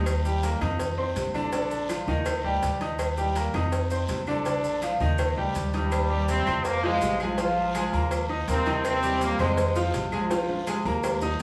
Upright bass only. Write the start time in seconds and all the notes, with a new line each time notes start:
Already playing: D#2
0.61 F2
1.16 A#1
2.07 D#2
2.44 D2
2.63 D#2
3.54 F2
4.09 A#1
5.00 D#2
5.37 D2
5.56 D#2
6.47 F2
7.02 A#1
7.93 D#2
8.48 D#2
9.39 F2
9.94 A#1
10.85 D#2